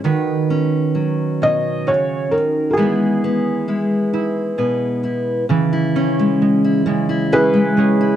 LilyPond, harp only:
\new Staff \with { instrumentName = "Harp" } { \time 6/8 \key cis \minor \tempo 4. = 44 <dis fis'>4. cis'8 fis'4 | <b gis'>4. e'8 gis'4 | e8 cis'8 gis8 gis4 <gis cis' gis'>8 | }